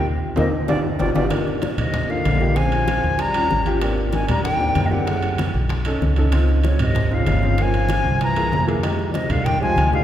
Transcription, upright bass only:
\new Staff \with { instrumentName = "Upright bass" } { \clef bass \time 4/4 \key g \phrygian \tempo 4 = 191 r4 ees,8 r8 g,,8 r8 g,,8 g,,8 | \key c \minor r4. ees,4. bes,,4~ | bes,,4. ees,4. aes,,4~ | aes,,4. ees,4. fis,4~ |
fis,4. b,,4. cis,4~ | cis,4. aes,,4. g,,4~ | g,,4. c,4. f,4~ | f,4. c,4. d,4 | }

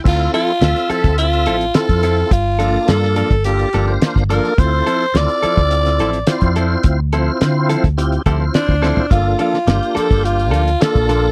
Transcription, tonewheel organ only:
\new Staff \with { instrumentName = "Tonewheel organ" } { \time 4/4 \key d \minor \tempo 4 = 106 <c' e' f' a'>8. r16 <c' f' a' e''>4.~ <c' f' a' e''>16 r16 <c' e' f' a'>4 | r8 <bes d' f' a'>4~ <bes d' f' a'>16 r16 <bes d' f' a'>8 <bes d' f' a'>16 <bes d' f' c''>8. <bes d' f' a'>8 | <c' e' f' a'>8. r16 <c' e' f' a'>4.~ <c' e' f' a'>16 r16 <c' e' f' c''>4~ | <c' e' f' c''>16 r16 <c' e' f' c''>4~ <c' e' f' c''>16 r16 <c' e' f' g'>8 <c' e' f' g'>16 <c' e' f' c''>8. <c' e' f' c''>8 |
<bes d' f' a'>8. r16 <bes d' f' g'>4.~ <bes d' f' g'>16 r16 <bes d' f' a'>4 | }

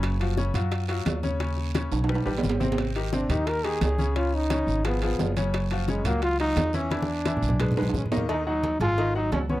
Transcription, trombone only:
\new Staff \with { instrumentName = "Trombone" } { \time 4/4 \key ees \minor \tempo 4 = 174 r1 | r1 | r4 d'8 ees'8 bes'8 aes'8 aes'4 | f'8 ees'4. ces'8 ces'4 r8 |
r4 aes8 bes8 f'8 ees'4 des'8 | d'2. des'8 bes8 | ees'8 ees'4 f'4 ees'8 des'8 ces'8 | }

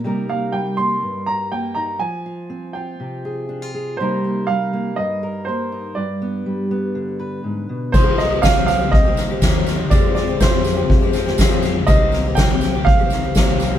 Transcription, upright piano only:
\new Staff \with { instrumentName = "Upright piano" } { \time 4/4 \key c \minor \tempo 4 = 122 r8 f''8 g''8 c'''4 bes''8 g''8 bes''8 | aes''4. g''2 r8 | c''4 f''4 ees''4 c''4 | d''2. r4 |
c''8 ees''8 f''8 f''8 ees''2 | d''8 d''8 c''2 r4 | ees''4 g''4 f''2 | }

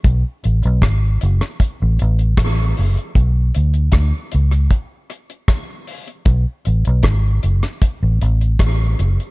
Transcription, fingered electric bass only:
\new Staff \with { instrumentName = "Fingered electric bass" } { \clef bass \time 4/4 \key b \dorian \tempo 4 = 77 b,,16 r16 a,,16 b,,16 gis,,8 fis,,16 r8 a,,16 a,,8 a,,8 fis,,16 r16 | b,,8 d,8 d,16 r16 cis,8 r2 | b,,16 r16 a,,16 b,,16 gis,,8 fis,,16 r8 a,,16 a,,8 a,,8 fis,,16 r16 | }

